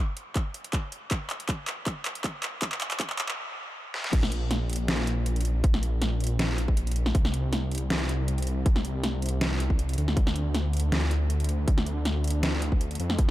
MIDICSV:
0, 0, Header, 1, 3, 480
1, 0, Start_track
1, 0, Tempo, 377358
1, 1412, Time_signature, 4, 2, 24, 8
1, 16924, End_track
2, 0, Start_track
2, 0, Title_t, "Detuned saw bass"
2, 0, Program_c, 0, 39
2, 5252, Note_on_c, 0, 34, 90
2, 9070, Note_off_c, 0, 34, 0
2, 9092, Note_on_c, 0, 36, 91
2, 12670, Note_off_c, 0, 36, 0
2, 12693, Note_on_c, 0, 38, 90
2, 16510, Note_off_c, 0, 38, 0
2, 16533, Note_on_c, 0, 41, 91
2, 16924, Note_off_c, 0, 41, 0
2, 16924, End_track
3, 0, Start_track
3, 0, Title_t, "Drums"
3, 212, Note_on_c, 9, 42, 65
3, 339, Note_off_c, 9, 42, 0
3, 452, Note_on_c, 9, 36, 97
3, 452, Note_on_c, 9, 39, 64
3, 452, Note_on_c, 9, 42, 79
3, 579, Note_off_c, 9, 36, 0
3, 579, Note_off_c, 9, 39, 0
3, 579, Note_off_c, 9, 42, 0
3, 691, Note_on_c, 9, 42, 65
3, 819, Note_off_c, 9, 42, 0
3, 820, Note_on_c, 9, 42, 67
3, 932, Note_off_c, 9, 42, 0
3, 932, Note_on_c, 9, 36, 94
3, 932, Note_on_c, 9, 39, 72
3, 932, Note_on_c, 9, 42, 84
3, 1059, Note_off_c, 9, 36, 0
3, 1059, Note_off_c, 9, 39, 0
3, 1059, Note_off_c, 9, 42, 0
3, 1172, Note_on_c, 9, 42, 67
3, 1299, Note_off_c, 9, 42, 0
3, 1412, Note_on_c, 9, 36, 102
3, 1412, Note_on_c, 9, 39, 77
3, 1412, Note_on_c, 9, 42, 79
3, 1539, Note_off_c, 9, 36, 0
3, 1540, Note_off_c, 9, 39, 0
3, 1540, Note_off_c, 9, 42, 0
3, 1652, Note_on_c, 9, 39, 79
3, 1652, Note_on_c, 9, 42, 62
3, 1779, Note_off_c, 9, 39, 0
3, 1779, Note_off_c, 9, 42, 0
3, 1779, Note_on_c, 9, 42, 66
3, 1891, Note_off_c, 9, 42, 0
3, 1891, Note_on_c, 9, 39, 75
3, 1891, Note_on_c, 9, 42, 78
3, 1892, Note_on_c, 9, 36, 98
3, 2019, Note_off_c, 9, 36, 0
3, 2019, Note_off_c, 9, 39, 0
3, 2019, Note_off_c, 9, 42, 0
3, 2131, Note_on_c, 9, 39, 82
3, 2131, Note_on_c, 9, 42, 67
3, 2258, Note_off_c, 9, 39, 0
3, 2258, Note_off_c, 9, 42, 0
3, 2372, Note_on_c, 9, 36, 98
3, 2372, Note_on_c, 9, 39, 80
3, 2372, Note_on_c, 9, 42, 75
3, 2499, Note_off_c, 9, 36, 0
3, 2499, Note_off_c, 9, 39, 0
3, 2499, Note_off_c, 9, 42, 0
3, 2612, Note_on_c, 9, 39, 86
3, 2612, Note_on_c, 9, 42, 65
3, 2739, Note_off_c, 9, 39, 0
3, 2739, Note_off_c, 9, 42, 0
3, 2740, Note_on_c, 9, 42, 64
3, 2852, Note_off_c, 9, 42, 0
3, 2852, Note_on_c, 9, 36, 98
3, 2852, Note_on_c, 9, 39, 87
3, 2852, Note_on_c, 9, 42, 78
3, 2979, Note_off_c, 9, 36, 0
3, 2979, Note_off_c, 9, 39, 0
3, 2979, Note_off_c, 9, 42, 0
3, 3092, Note_on_c, 9, 39, 91
3, 3092, Note_on_c, 9, 42, 66
3, 3219, Note_off_c, 9, 39, 0
3, 3219, Note_off_c, 9, 42, 0
3, 3332, Note_on_c, 9, 36, 103
3, 3332, Note_on_c, 9, 39, 98
3, 3332, Note_on_c, 9, 42, 79
3, 3459, Note_off_c, 9, 36, 0
3, 3459, Note_off_c, 9, 39, 0
3, 3459, Note_off_c, 9, 42, 0
3, 3460, Note_on_c, 9, 39, 83
3, 3572, Note_off_c, 9, 39, 0
3, 3572, Note_on_c, 9, 39, 96
3, 3572, Note_on_c, 9, 42, 64
3, 3699, Note_off_c, 9, 39, 0
3, 3699, Note_off_c, 9, 42, 0
3, 3701, Note_on_c, 9, 39, 83
3, 3701, Note_on_c, 9, 42, 63
3, 3812, Note_on_c, 9, 36, 96
3, 3813, Note_off_c, 9, 39, 0
3, 3813, Note_off_c, 9, 42, 0
3, 3813, Note_on_c, 9, 39, 99
3, 3813, Note_on_c, 9, 42, 74
3, 3939, Note_off_c, 9, 36, 0
3, 3940, Note_off_c, 9, 39, 0
3, 3940, Note_off_c, 9, 42, 0
3, 3941, Note_on_c, 9, 39, 89
3, 4052, Note_off_c, 9, 39, 0
3, 4052, Note_on_c, 9, 39, 103
3, 4052, Note_on_c, 9, 42, 65
3, 4180, Note_off_c, 9, 39, 0
3, 4180, Note_off_c, 9, 42, 0
3, 4180, Note_on_c, 9, 39, 89
3, 4308, Note_off_c, 9, 39, 0
3, 5012, Note_on_c, 9, 38, 63
3, 5140, Note_off_c, 9, 38, 0
3, 5141, Note_on_c, 9, 38, 74
3, 5252, Note_on_c, 9, 36, 123
3, 5253, Note_on_c, 9, 42, 86
3, 5253, Note_on_c, 9, 49, 105
3, 5269, Note_off_c, 9, 38, 0
3, 5380, Note_off_c, 9, 36, 0
3, 5380, Note_off_c, 9, 42, 0
3, 5380, Note_off_c, 9, 49, 0
3, 5381, Note_on_c, 9, 40, 77
3, 5493, Note_on_c, 9, 42, 67
3, 5508, Note_off_c, 9, 40, 0
3, 5620, Note_off_c, 9, 42, 0
3, 5733, Note_on_c, 9, 40, 75
3, 5733, Note_on_c, 9, 42, 80
3, 5860, Note_off_c, 9, 40, 0
3, 5860, Note_off_c, 9, 42, 0
3, 5973, Note_on_c, 9, 42, 53
3, 6015, Note_off_c, 9, 42, 0
3, 6015, Note_on_c, 9, 42, 68
3, 6052, Note_off_c, 9, 42, 0
3, 6052, Note_on_c, 9, 42, 85
3, 6179, Note_off_c, 9, 42, 0
3, 6212, Note_on_c, 9, 38, 116
3, 6212, Note_on_c, 9, 42, 85
3, 6339, Note_off_c, 9, 38, 0
3, 6339, Note_off_c, 9, 42, 0
3, 6452, Note_on_c, 9, 42, 69
3, 6579, Note_off_c, 9, 42, 0
3, 6691, Note_on_c, 9, 42, 84
3, 6818, Note_off_c, 9, 42, 0
3, 6820, Note_on_c, 9, 42, 52
3, 6876, Note_off_c, 9, 42, 0
3, 6876, Note_on_c, 9, 42, 68
3, 6932, Note_off_c, 9, 42, 0
3, 6932, Note_on_c, 9, 42, 70
3, 7059, Note_off_c, 9, 42, 0
3, 7172, Note_on_c, 9, 36, 127
3, 7172, Note_on_c, 9, 42, 82
3, 7299, Note_off_c, 9, 36, 0
3, 7300, Note_off_c, 9, 42, 0
3, 7301, Note_on_c, 9, 40, 77
3, 7413, Note_on_c, 9, 42, 69
3, 7428, Note_off_c, 9, 40, 0
3, 7540, Note_off_c, 9, 42, 0
3, 7652, Note_on_c, 9, 40, 75
3, 7652, Note_on_c, 9, 42, 81
3, 7779, Note_off_c, 9, 40, 0
3, 7779, Note_off_c, 9, 42, 0
3, 7892, Note_on_c, 9, 42, 49
3, 7934, Note_off_c, 9, 42, 0
3, 7934, Note_on_c, 9, 42, 67
3, 7972, Note_off_c, 9, 42, 0
3, 7972, Note_on_c, 9, 42, 83
3, 8099, Note_off_c, 9, 42, 0
3, 8132, Note_on_c, 9, 38, 119
3, 8132, Note_on_c, 9, 42, 80
3, 8260, Note_off_c, 9, 38, 0
3, 8260, Note_off_c, 9, 42, 0
3, 8372, Note_on_c, 9, 42, 69
3, 8499, Note_off_c, 9, 42, 0
3, 8500, Note_on_c, 9, 36, 64
3, 8612, Note_on_c, 9, 42, 84
3, 8627, Note_off_c, 9, 36, 0
3, 8739, Note_off_c, 9, 42, 0
3, 8740, Note_on_c, 9, 42, 50
3, 8796, Note_off_c, 9, 42, 0
3, 8796, Note_on_c, 9, 42, 67
3, 8851, Note_off_c, 9, 42, 0
3, 8851, Note_on_c, 9, 42, 68
3, 8979, Note_off_c, 9, 42, 0
3, 8980, Note_on_c, 9, 40, 76
3, 9092, Note_on_c, 9, 36, 127
3, 9092, Note_on_c, 9, 42, 80
3, 9107, Note_off_c, 9, 40, 0
3, 9219, Note_off_c, 9, 36, 0
3, 9219, Note_off_c, 9, 42, 0
3, 9221, Note_on_c, 9, 40, 78
3, 9333, Note_on_c, 9, 42, 66
3, 9348, Note_off_c, 9, 40, 0
3, 9460, Note_off_c, 9, 42, 0
3, 9573, Note_on_c, 9, 40, 77
3, 9573, Note_on_c, 9, 42, 78
3, 9700, Note_off_c, 9, 40, 0
3, 9700, Note_off_c, 9, 42, 0
3, 9813, Note_on_c, 9, 42, 48
3, 9855, Note_off_c, 9, 42, 0
3, 9855, Note_on_c, 9, 42, 65
3, 9893, Note_off_c, 9, 42, 0
3, 9893, Note_on_c, 9, 42, 79
3, 10020, Note_off_c, 9, 42, 0
3, 10053, Note_on_c, 9, 38, 124
3, 10053, Note_on_c, 9, 42, 75
3, 10180, Note_off_c, 9, 38, 0
3, 10180, Note_off_c, 9, 42, 0
3, 10293, Note_on_c, 9, 42, 68
3, 10420, Note_off_c, 9, 42, 0
3, 10533, Note_on_c, 9, 42, 78
3, 10660, Note_off_c, 9, 42, 0
3, 10661, Note_on_c, 9, 42, 49
3, 10716, Note_off_c, 9, 42, 0
3, 10716, Note_on_c, 9, 42, 65
3, 10773, Note_off_c, 9, 42, 0
3, 10773, Note_on_c, 9, 42, 65
3, 10900, Note_off_c, 9, 42, 0
3, 11013, Note_on_c, 9, 36, 125
3, 11013, Note_on_c, 9, 42, 79
3, 11140, Note_off_c, 9, 36, 0
3, 11140, Note_off_c, 9, 42, 0
3, 11140, Note_on_c, 9, 40, 83
3, 11253, Note_on_c, 9, 42, 65
3, 11267, Note_off_c, 9, 40, 0
3, 11380, Note_off_c, 9, 42, 0
3, 11493, Note_on_c, 9, 40, 82
3, 11493, Note_on_c, 9, 42, 76
3, 11620, Note_off_c, 9, 40, 0
3, 11620, Note_off_c, 9, 42, 0
3, 11732, Note_on_c, 9, 42, 49
3, 11775, Note_off_c, 9, 42, 0
3, 11775, Note_on_c, 9, 42, 64
3, 11812, Note_off_c, 9, 42, 0
3, 11812, Note_on_c, 9, 42, 78
3, 11940, Note_off_c, 9, 42, 0
3, 11973, Note_on_c, 9, 38, 122
3, 11973, Note_on_c, 9, 42, 75
3, 12100, Note_off_c, 9, 38, 0
3, 12100, Note_off_c, 9, 42, 0
3, 12213, Note_on_c, 9, 42, 66
3, 12341, Note_off_c, 9, 42, 0
3, 12341, Note_on_c, 9, 36, 63
3, 12453, Note_on_c, 9, 42, 76
3, 12468, Note_off_c, 9, 36, 0
3, 12580, Note_off_c, 9, 42, 0
3, 12581, Note_on_c, 9, 42, 48
3, 12637, Note_off_c, 9, 42, 0
3, 12637, Note_on_c, 9, 42, 60
3, 12694, Note_off_c, 9, 42, 0
3, 12694, Note_on_c, 9, 42, 64
3, 12821, Note_off_c, 9, 42, 0
3, 12822, Note_on_c, 9, 40, 86
3, 12932, Note_on_c, 9, 36, 124
3, 12933, Note_on_c, 9, 42, 79
3, 12949, Note_off_c, 9, 40, 0
3, 13060, Note_off_c, 9, 36, 0
3, 13061, Note_off_c, 9, 42, 0
3, 13062, Note_on_c, 9, 40, 87
3, 13174, Note_on_c, 9, 42, 63
3, 13189, Note_off_c, 9, 40, 0
3, 13301, Note_off_c, 9, 42, 0
3, 13414, Note_on_c, 9, 40, 79
3, 13414, Note_on_c, 9, 42, 73
3, 13541, Note_off_c, 9, 40, 0
3, 13541, Note_off_c, 9, 42, 0
3, 13654, Note_on_c, 9, 42, 47
3, 13696, Note_off_c, 9, 42, 0
3, 13696, Note_on_c, 9, 42, 62
3, 13733, Note_off_c, 9, 42, 0
3, 13733, Note_on_c, 9, 42, 78
3, 13860, Note_off_c, 9, 42, 0
3, 13893, Note_on_c, 9, 38, 117
3, 13893, Note_on_c, 9, 42, 79
3, 14020, Note_off_c, 9, 38, 0
3, 14020, Note_off_c, 9, 42, 0
3, 14133, Note_on_c, 9, 42, 67
3, 14260, Note_off_c, 9, 42, 0
3, 14373, Note_on_c, 9, 42, 78
3, 14500, Note_off_c, 9, 42, 0
3, 14501, Note_on_c, 9, 42, 46
3, 14557, Note_off_c, 9, 42, 0
3, 14557, Note_on_c, 9, 42, 64
3, 14613, Note_off_c, 9, 42, 0
3, 14613, Note_on_c, 9, 42, 64
3, 14740, Note_off_c, 9, 42, 0
3, 14852, Note_on_c, 9, 36, 121
3, 14853, Note_on_c, 9, 42, 85
3, 14979, Note_off_c, 9, 36, 0
3, 14980, Note_off_c, 9, 42, 0
3, 14980, Note_on_c, 9, 40, 85
3, 15092, Note_on_c, 9, 42, 67
3, 15107, Note_off_c, 9, 40, 0
3, 15219, Note_off_c, 9, 42, 0
3, 15332, Note_on_c, 9, 40, 82
3, 15332, Note_on_c, 9, 42, 76
3, 15460, Note_off_c, 9, 40, 0
3, 15460, Note_off_c, 9, 42, 0
3, 15572, Note_on_c, 9, 42, 49
3, 15614, Note_off_c, 9, 42, 0
3, 15614, Note_on_c, 9, 42, 67
3, 15651, Note_off_c, 9, 42, 0
3, 15651, Note_on_c, 9, 42, 81
3, 15779, Note_off_c, 9, 42, 0
3, 15812, Note_on_c, 9, 38, 112
3, 15812, Note_on_c, 9, 42, 81
3, 15939, Note_off_c, 9, 38, 0
3, 15939, Note_off_c, 9, 42, 0
3, 16052, Note_on_c, 9, 42, 69
3, 16179, Note_off_c, 9, 42, 0
3, 16180, Note_on_c, 9, 36, 59
3, 16292, Note_on_c, 9, 42, 82
3, 16307, Note_off_c, 9, 36, 0
3, 16419, Note_off_c, 9, 42, 0
3, 16420, Note_on_c, 9, 42, 50
3, 16476, Note_off_c, 9, 42, 0
3, 16476, Note_on_c, 9, 42, 64
3, 16532, Note_off_c, 9, 42, 0
3, 16532, Note_on_c, 9, 42, 66
3, 16659, Note_off_c, 9, 42, 0
3, 16660, Note_on_c, 9, 40, 88
3, 16772, Note_on_c, 9, 36, 112
3, 16772, Note_on_c, 9, 42, 87
3, 16787, Note_off_c, 9, 40, 0
3, 16899, Note_off_c, 9, 42, 0
3, 16900, Note_off_c, 9, 36, 0
3, 16924, End_track
0, 0, End_of_file